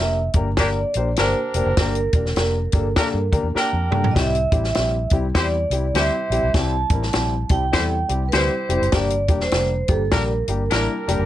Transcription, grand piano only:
0.00 A#3 D4 G4 A#4
0.35 A#3 D4 G4 A#4
0.59 A#3 D4 G4 A#4
0.96 A#3 D4 G4 C5
1.19 A#3 D4 G4 A#4
1.55 A#3 D4 G4 A#4
1.79 A#3 D4 G4 A#4
2.14 A#3 D4 G4 A#4
2.38 A#3 D4 G4 A#4
2.73 A#3 D4 G4 A4
2.98 A#3 D4 G4 A4
3.32 A#3 D4 G4 A#4
3.54 A#3 D4 G4 A#4
3.91 A#3 D4 G4 A4
4.15 G3 C4 E4 G4
4.52 G3 C4 E4 G4
4.76 G3 C4 E4 G4
5.12 G3 C4 E4 G4
5.35 G3 C4 E4 G4
5.72 G3 C4 E4 G4
5.94 G3 C4 E4 G4
6.31 G3 C4 E4 G4
6.55 G3 C4 E4 G4
6.91 G3 C4 E4 A#4
7.13 G3 C4 E4 G4
7.50 G3 C4 E4 G4
7.72 G3 C4 E4 A4
8.09 G3 C4 E4 G4
8.33 G3 C4 E4 G4
8.69 G3 C4 E4 G4
8.93 G3 A#3 D4 G4
9.28 G3 A#3 D4 G4
9.53 G3 A#3 D4 G4
9.88 G3 A#3 D4 G4
10.12 G3 A#3 D4 G4
10.48 G3 A#3 D4 G4
10.72 G3 A#3 D4 E4
11.07 G3 A#3 D4 G4

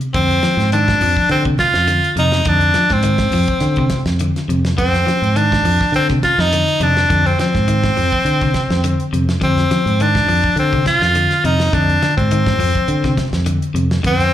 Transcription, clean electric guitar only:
Already playing: C3
0.15 D3
0.44 F3
0.73 D#3
1.02 F3
1.46 C3
1.88 D3
2.17 C3
2.46 D3
2.75 F3
3.04 D#3
3.33 F3
3.78 C3
4.21 D3
4.49 C3
4.78 muted clean electric guitar stroke
5.06 F3
5.36 D#3
5.65 F3
6.11 C3
6.53 D3
6.81 C3
7.10 D3
7.39 F3
7.68 D#3
7.97 F3
8.43 C3
8.84 D3
9.13 C3
9.41 D3
9.71 F3
10.01 D#3
10.28 F3
10.73 C3
11.16 D3
11.44 C3
11.73 D3
12.02 D3
12.32 D#3
12.60 F3
13.04 C3
13.46 D3
13.75 C3
14.03 D3

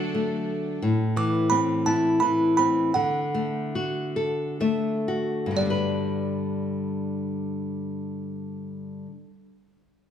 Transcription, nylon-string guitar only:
Already playing: D3 A3 D4 F#4
0.14 A3
0.82 A2
1.16 E3
1.52 C4
1.87 E4
2.22 E3
2.59 C4
2.96 D3
3.34 A3
3.75 F#4
4.16 A4
4.61 A3 E5
5.08 F#4
5.46 G2
5.51 D3
5.56 G3
5.61 B3
5.65 D4
5.70 B4

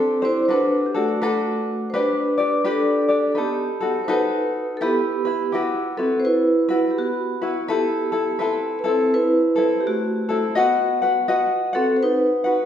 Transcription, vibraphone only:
Already playing: C4 A4
0.25 E4 C5
0.45 C5
0.51 D4 B4
0.86 G4
0.96 A3 F#4
1.90 C5
1.94 D4 B4
2.67 D4 A4
3.32 A4
3.38 B3 G4
4.04 C5
4.11 D#4 B4
4.77 A4
4.82 B3 G4
5.97 C4 A4
6.20 C5
6.25 E4 B4
6.91 G4
6.98 B3 F#4
7.71 B3 G4
8.79 B4
8.88 C4 A4
9.14 E4 B4
9.81 G4
9.87 A3 F#4
10.59 B3 F#4
11.75 C4 A4
11.96 C5
12.03 D#4 B4

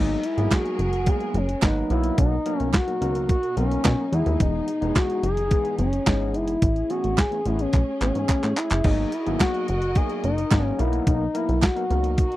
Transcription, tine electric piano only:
Already playing: F#3 A#3 B3 D#4 G#4
0.37 F#3 A#3 B3 D#4 G#4
1.07 F#3 A#3 B3 D#4 G#4
1.62 F#3 A#3 B3 D#4 B4
1.90 F#3 A#3 B3 D#4 A#4
2.46 F#3 A#3 B3 D#4 A#4
2.87 F#3 A#3 B3 D#4 A#4
3.01 F#3 A#3 B3 D#4 A#4
3.56 F#3 A#3 B3 D#4 A#4
4.12 E3 G#3 B3 D#4 F#4
4.19 G#4
4.81 E3 G#3 B3 D#4 G#4
5.50 E3 G#3 B3 D#4 G#4
6.06 E3 G#3 B3 D#4 G#4
6.90 E3 A3 B3 C#4 G#4
7.31 E3 A3 B3 C#4 G#4
7.45 E3 A3 B3 C#4 G#4
8.01 E3 A3 B3 C#4 G#4
8.84 F#3 A#3 B3 D#4 G#4
9.26 F#3 A#3 B3 D#4 G#4
9.95 F#3 A#3 B3 D#4 G#4
10.51 F#3 A#3 B3 D#4 G#4
10.78 F#3 A#3 B3 D#4 A#4
11.34 F#3 A#3 B3 D#4 A#4
11.76 F#3 A#3 B3 D#4 A#4
11.90 F#3 A#3 B3 D#4 A#4

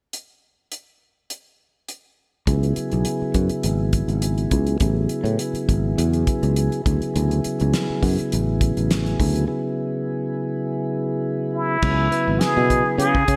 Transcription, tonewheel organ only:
2.47 C#3 F#3 B3 E4 G#4
4.81 C#3 F#3 B3 E4 G#4
6.86 C#3 F#3 B3 E4 G#4
9.47 C#3 F#3 B3 E4 G#4
11.82 C#3 F#3 B3 E4 G#4
12.11 C#3 F#3 B3 E4 B4

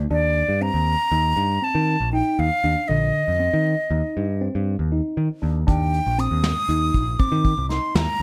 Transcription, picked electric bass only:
0.10 D#2
0.49 G2
0.74 D#2
1.12 D#2
1.37 G2
1.75 D#3
2.00 A#1
2.39 D#2
2.64 D#2
2.90 A#1
3.28 F2
3.53 D#3
3.91 D#2
4.17 G2
4.55 G2
4.79 D#2
5.17 D#3
5.43 D#2
5.68 D#2
6.07 A#1
6.31 D#2
6.69 D#2
6.94 A#1
7.32 D#3
7.58 C2
7.95 D#2

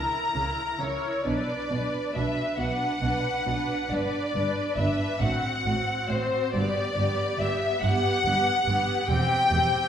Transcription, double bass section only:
0.35 C#2
0.80 C#2
1.26 B1
1.71 B1
2.16 B1
2.59 B1
3.02 B1
3.46 B1
3.90 G1
4.35 G1
4.77 G1
5.21 A1
5.66 A1
6.10 A1
6.54 G1
6.96 G1
7.39 G1
7.82 G1
8.25 G1
8.67 G1
9.09 E1
9.51 E1

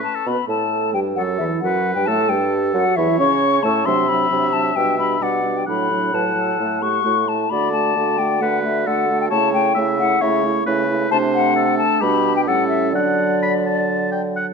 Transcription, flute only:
0.04 A5
0.27 B5
0.49 A5
0.94 G5
1.16 F#5
1.38 E5
1.61 F#5
1.95 G5
2.06 A5
2.29 G5
2.74 F#5
2.96 E5
3.19 C#6
3.63 A5
3.85 C6
4.08 B5
4.53 A5
4.76 G5
4.99 B5
5.23 F#5
5.57 G5
5.69 B5
6.14 A5
6.82 C#6
7.28 A5
7.50 B5
7.73 A5
8.18 G5
8.41 F#5
8.64 E5
8.87 F#5
9.21 G5
9.30 A5
9.54 G5
9.99 F#5
10.22 E5
11.11 A5
11.34 F#5
11.78 A5
12.02 B5
12.36 G5
12.47 F#5
12.68 E5
12.93 D5

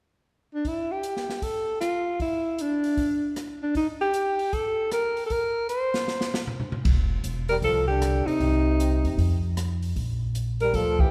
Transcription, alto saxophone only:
0.55 D4
0.68 E4
0.92 G4
1.36 G4
1.43 A4
1.81 F4
2.21 E4
2.61 D4
3.63 D4
3.77 D#4
4.01 G4
4.53 A4
4.92 A#4
5.26 A4
5.32 A#4
5.69 C5
7.49 A#4
7.64 A4
7.87 G4
8.27 D#4
10.61 A#4
10.75 A4
11.00 G4

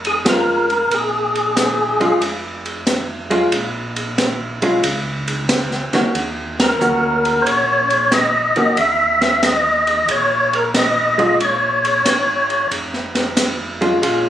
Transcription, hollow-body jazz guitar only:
0.25 G#3 C#4 F4
2.00 G#3 C#4 F4
3.30 G#3 C#4 F4
4.62 G#3 C#4 F4
5.94 D#3 A#3 C#4 F#4
6.81 A#3 C#4 F#4
8.56 D#3 A#3 C#4 F#4
11.18 G#3 C#4 F4
13.81 G#3 C#4 F4
14.02 G#3 C#4 F4

